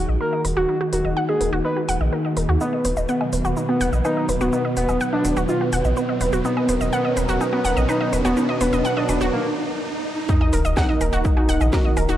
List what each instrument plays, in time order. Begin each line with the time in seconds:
Already playing: analog polysynth D#3 A#3 D#4, analog synth pad D#3 D#4 F#4 G#4, riser
0.09 analog synth bass A#1, synth arpeggio sound D#5
0.21 synth arpeggio sound A#4, analog synth lead A#4
0.33 synth arpeggio sound D#5
0.45 analog synth bass D#1, synth arpeggio sound A#4, open hi-hat
0.57 analog synth bass D#1, synth arpeggio sound F#4, analog synth lead F#4
0.69 synth arpeggio sound D#4
0.81 synth arpeggio sound F#4
0.93 analog synth bass D#1, analog synth lead F#4, synth arpeggio sound A#4, open hi-hat
1.05 analog synth bass D#1, synth arpeggio sound D#5
1.17 synth arpeggio sound F#5
1.29 analog polysynth D#3 A#3 D#4, analog synth lead G#4, synth arpeggio sound D#5
1.41 analog synth bass D#1, synth arpeggio sound A#4, open hi-hat
1.53 analog synth bass D#1, synth arpeggio sound F#4
1.65 synth arpeggio sound D#4, analog synth lead B4
1.77 synth arpeggio sound F#4
1.89 analog synth bass D#1, synth arpeggio sound F#5, open hi-hat
2.01 analog synth bass A#1, synth arpeggio sound D#5
2.13 synth arpeggio sound A#4
2.25 synth arpeggio sound D#5
2.37 analog synth bass D#1, synth arpeggio sound A#4, open hi-hat
2.49 analog synth bass D#2, synth arpeggio sound F#4
2.61 analog synth lead B3, synth arpeggio sound D#4, analog synth pad B4, mid tom, shaker
2.73 synth arpeggio sound D#5
2.85 analog synth bass D#1, synth arpeggio sound B4, open hi-hat, shaker
2.97 analog synth bass D#1, synth arpeggio sound D#5, mid tom, shaker
3.09 analog synth lead B3, synth arpeggio sound F#5, shaker
3.21 analog polysynth B2 F#3 B3, synth arpeggio sound D#5, low woodblock
3.33 analog synth bass D#1, synth arpeggio sound B4, open hi-hat, mid tom, shaker
3.45 analog synth bass D#1, synth arpeggio sound F#4, shaker
3.57 synth arpeggio sound D#4, mid tom, shaker
3.69 analog synth lead B3, synth arpeggio sound F#4
3.81 analog synth bass D#1, synth arpeggio sound F#5, open hi-hat, shaker
3.93 analog synth bass A#1, synth arpeggio sound D#5, shaker
4.05 analog synth lead D#4, synth arpeggio sound B4, low woodblock, shaker
4.17 synth arpeggio sound D#5
4.29 analog synth bass D#1, synth arpeggio sound B4, open hi-hat, mid tom, shaker
4.41 analog synth bass D#1, analog synth lead B3, synth arpeggio sound F#4, shaker
4.53 synth arpeggio sound D#4, mid tom, shaker
4.65 synth arpeggio sound D#5
4.77 analog synth bass D#1, analog synth lead B3, synth arpeggio sound B4, open hi-hat, shaker
4.89 analog synth bass D#1, synth arpeggio sound D#5, low woodblock, shaker
5.01 synth arpeggio sound F#5, shaker
5.13 analog polysynth B2 F#3 B3, analog synth lead D4, synth arpeggio sound D#5
5.25 analog synth bass D#1, synth arpeggio sound B4, open hi-hat, mid tom, shaker
5.37 analog synth bass D#1, synth arpeggio sound F#4, shaker
5.49 synth arpeggio sound D#4, analog synth lead F4, mid tom, shaker
5.61 synth arpeggio sound F#4
5.73 analog synth bass D#1, synth arpeggio sound F#5, open hi-hat, low woodblock, shaker
5.85 analog synth bass A#1, synth arpeggio sound D#5, mid tom, shaker
5.97 synth arpeggio sound B4, shaker
6.09 synth arpeggio sound D#5
6.21 analog synth bass D#1, synth arpeggio sound B4, open hi-hat, mid tom, shaker
6.33 analog synth bass D#1, synth arpeggio sound F#4, shaker
6.45 analog synth lead B3, synth arpeggio sound D#4, analog synth pad A#4, mid tom, shaker
6.57 synth arpeggio sound D#5, low woodblock
6.69 analog synth bass D#1, synth arpeggio sound B4, open hi-hat, mid tom, shaker
6.81 analog synth bass D#1, synth arpeggio sound D#5, shaker
6.93 analog synth lead B3, synth arpeggio sound F#5, mid tom, shaker
7.05 analog polysynth B2 F#3 B3, synth arpeggio sound D#5
7.17 analog synth bass D#1, synth arpeggio sound B4, open hi-hat, mid tom, shaker
7.29 analog synth bass D#1, synth arpeggio sound F#4, shaker
7.41 synth arpeggio sound D#4, mid tom, low woodblock, shaker
7.53 analog synth lead B3, synth arpeggio sound F#4
7.65 analog synth bass D#1, synth arpeggio sound F#5, open hi-hat, mid tom, shaker
7.77 analog synth bass A#1, synth arpeggio sound D#5, shaker
7.89 analog synth lead D#4, synth arpeggio sound B4, mid tom, shaker
8.01 synth arpeggio sound D#5
8.13 analog synth bass D#1, synth arpeggio sound B4, open hi-hat, mid tom, shaker
8.25 analog synth bass D#1, analog synth lead B3, synth arpeggio sound F#4, low woodblock, shaker
8.37 synth arpeggio sound D#4, mid tom, shaker
8.49 synth arpeggio sound D#5, mid tom
8.61 analog synth bass D#1, analog synth lead B3, synth arpeggio sound B4, open hi-hat, mid tom, shaker
8.73 analog synth bass D#1, synth arpeggio sound D#5, mid tom, shaker
8.85 synth arpeggio sound F#5, mid tom, shaker
8.97 analog polysynth B2 F#3 B3, analog synth lead D4, synth arpeggio sound D#5, mid tom
9.09 analog synth bass D#1, synth arpeggio sound B4, open hi-hat, mid tom, low woodblock, shaker
9.21 analog synth bass D#1, synth arpeggio sound F#4, mid tom, shaker
9.33 analog synth lead A#3
10.29 analog synth pad D#3 D#4 F#4 A#4, analog synth lead D#4, synth arpeggio sound D#4, kick, sub drop, shaker
10.41 synth arpeggio sound D#5, low woodblock
10.53 analog synth bass D#1, synth arpeggio sound A#4, open hi-hat, shaker
10.65 analog synth bass D#1, synth arpeggio sound D#5, shaker
10.77 analog synth lead D#4, synth arpeggio sound F#5, kick, snare, low woodblock, shaker
10.89 analog polysynth D#3 A#3 D#4, synth arpeggio sound D#5
11.01 analog synth bass D#1, synth arpeggio sound A#4, open hi-hat, low woodblock, shaker
11.13 analog synth bass D#1, synth arpeggio sound F#4, shaker
11.25 synth arpeggio sound D#4, kick, shaker
11.37 analog synth lead D#4, synth arpeggio sound F#4, low woodblock
11.49 analog synth bass D#1, synth arpeggio sound F#5, open hi-hat, shaker
11.61 analog synth bass A#1, synth arpeggio sound D#5, low woodblock, shaker
11.73 analog synth lead F#4, synth arpeggio sound A#4, kick, snare, shaker
11.85 synth arpeggio sound D#5
11.97 analog synth bass D#1, synth arpeggio sound A#4, open hi-hat, low woodblock, shaker
12.09 analog synth bass D#1, analog synth lead D#4, synth arpeggio sound F#4, shaker